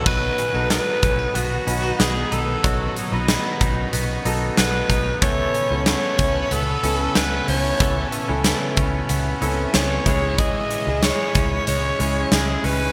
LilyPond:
<<
  \new Staff \with { instrumentName = "Alto saxophone" } { \time 4/4 \key b \mixolydian \tempo 4 = 93 b'4 b'4 fis'4 gis'8 a'8~ | a'8 r2 r8 b'4 | cis''4 cis''4 a'4 b'8 cis''8~ | cis''8 r2 r8 cis''4 |
dis''4 cis''4 cis''4 gis'8 b'8 | }
  \new Staff \with { instrumentName = "Grand piano" } { \time 4/4 \key b \mixolydian <b dis' fis' b'>8 r16 <b dis' fis' a'>4 r8. <b dis' fis' b'>4 r8 | <b dis' fis' cis''>8 r16 <b dis' fis' b'>4 r8. <b dis' fis' a'>4 r8 | <b cis' e' a'>8 r16 <b cis' e' a'>4 r8. <b cis' e' a'>4 r8 | <b cis' e' a'>8 r16 <b cis' e' a'>4 r8. <b c' cis' e' a'>4 <gis cis' e' gis'>8~ |
<gis cis' e' gis'>8 r16 <gis cis' e' gis'>4 r8. <gis cis' e' gis'>4 r8 | }
  \new Staff \with { instrumentName = "Clean electric guitar" } { \time 4/4 \key b \mixolydian <fis fis'>8 cis'16 dis'16 b8 cis'16 dis'16 b8 cis'16 dis'16 b8 dis'8 | <fis fis'>8 dis'8 b8 dis'8 b8 dis'8 b8 dis'8 | <e a'>8 cis'8 b8 cis'8 b8 cis'8 b8 cis'8 | <e a'>8 cis'8 b8 cis'8 b8 cis'8 b8 e8 |
<e gis'>8 cis'8 gis8 cis'8 gis8 cis'8 gis8 cis'8 | }
  \new Staff \with { instrumentName = "String machine" } { \time 4/4 \key b \mixolydian << { <dis fis>1~ | <dis fis>1 | <cis e' a'>1~ | <cis e' a'>2.~ <cis e' a'>8 gis8~ |
gis1 | } \\ { b1 | cis'1 | b'1~ | b'2.~ b'8 r8 |
r1 | } >> }
  \new Staff \with { instrumentName = "Fingered electric bass" } { \clef bass \time 4/4 \key b \mixolydian b,,8 r16 b,,8 r16 b,,8 b,,8 b,,8 b,,8 b,,8 | b,,8 r16 b,,8 r16 b,,8 b,,8 b,,8 b,,8 b,,8 | cis,8 r16 cis,8 r16 cis,8 cis,8 cis,8 cis,8 cis,8 | cis,8 r16 cis,8 r16 cis,8 cis,8 cis,8 cis,8 cis,8~ |
cis,8 r16 cis,8 r16 cis,8 cis,8 cis,8 cis,8 cis,8 | }
  \new DrumStaff \with { instrumentName = "Drums" } \drummode { \time 4/4 <cymc bd>8 hh8 <hh sn>8 <hh bd>8 hh8 hh8 <hh sn>8 hh8 | <hh bd>8 hh8 <hh sn>8 <hh bd>8 hh8 hh8 <hh sn>8 <hh bd>8 | <hh bd>8 hh8 <hh sn>8 <hh bd>8 hh8 hh8 <hh sn>8 hho8 | <hh bd>8 hh8 <hh sn>8 <hh bd>8 hh8 hh8 <hh sn>8 <hh bd>8 |
<hh bd>8 hh8 <hh sn>8 <hh bd>8 hh8 hh8 <hh sn>8 hho8 | }
>>